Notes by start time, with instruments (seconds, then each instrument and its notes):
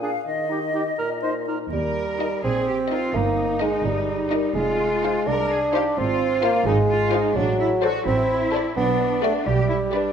Already playing: bassoon A#2
0.01 clarinet D4, cor anglais G#4, flute section F5
0.26 bassoon D#3, flute section D#5
0.48 clarinet D#4, cor anglais G4
0.73 clarinet D#4, cor anglais G4
0.98 bassoon A#2, cor anglais A#4
1.22 clarinet D#4, cor anglais C5
1.47 clarinet D#4, cor anglais A#4
1.72 double bass section D#2, bassoon G3, cello section A#4
2.20 viola section D#4, violin section A#4 D#5
2.44 double bass section A#1, bassoon C4, cello section G#4
2.68 cello section G4
2.91 viola section D#4, cello section F4, violin section A#4 D#5
3.15 double bass section G1, bassoon A#3, cello section D#4
3.61 bassoon G#3, viola section D#4, violin section A#4 D#5
3.84 double bass section G1, bassoon G3
4.31 viola section D#4, violin section A#4 D#5
4.55 double bass section F1, bassoon G#3, cello section F4
5.03 viola section D#4, violin section C5 F5
5.27 double bass section C2, bassoon D4, cello section A#4
5.51 cello section G#4
5.73 viola section D#4, cello section G4, violin section C5 F5
5.97 double bass section G#1, bassoon C4, cello section F4
6.43 bassoon A#3, viola section F4, violin section C5 F5
6.66 double bass section G#1, bassoon G#3, cello section D#4
6.90 cello section F4
7.12 cello section D#4, viola section F4, violin section C5 F5
7.35 double bass section A1, bassoon F#3, cello section D4
7.60 cello section E4
7.82 cello section F#4, viola section A4, violin section C5 D5
8.07 double bass section A1, bassoon C4, cello section E4
8.53 viola section A4, violin section C5 D5
8.77 double bass section B1, bassoon B3, cello section D4
9.23 bassoon A3, viola section G4, violin section B4 D5
9.46 double bass section B1, bassoon G3, cello section G4
9.69 cello section E4
9.92 cello section D4, viola section G4, violin section B4 D5